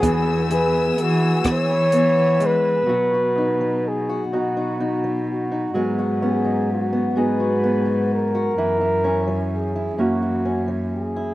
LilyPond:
<<
  \new Staff \with { instrumentName = "String section" } { \time 6/8 \key b \major \tempo 4. = 42 <b gis'' e'''>2. | r2. | r2. | r2. | }
  \new Staff \with { instrumentName = "Flugelhorn" } { \time 6/8 \key b \major gis'8 b'8 fis'8 cis''4 b'8~ | b'4 gis'8 fis'4 fis'8 | r8 gis'8 fis'8 b'4 ais'8~ | ais'4 gis'8 fis'8 r8 gis'8 | }
  \new Staff \with { instrumentName = "Harp" } { \time 6/8 \key b \major <b gis'>8 e'8 b8 b4. | fis8 dis'4 <dis' fis'>4. | fis8 cis'16 dis'8. <b dis' fis'>4. | e8 cis'4 <ais cis' fis'>4. | }
  \new Staff \with { instrumentName = "Steel-string acoustic guitar" } { \time 6/8 \key b \major << { r8 gis'4. b4 | fis'16 fis'16 dis'8. fis'16 dis'16 dis'16 dis'8. dis'16 | <gis b>16 fis'16 b8. b16 gis'16 fis'16 b8. fis'16 | e'16 e'16 cis'8. e'16 e'16 e'16 cis'8. e'16 | } \\ { e2~ e8 gis8 | b,8. fis8. b,8. fis8. | gis,8. gis8. gis,8. gis8. | fis,8. fis8. fis,8. fis8. | } >> }
  \new Staff \with { instrumentName = "Cello" } { \clef bass \time 6/8 \key b \major e,4 e8 e4. | b,4. b,4. | gis,4. gis,4. | fis,4. fis,4. | }
  \new DrumStaff \with { instrumentName = "Drums" } \drummode { \time 6/8 <hh bd>8 hh8 hh8 <hh bd ss>8 hh8 hh8 | r4. r4. | r4. r4. | r4. r4. | }
>>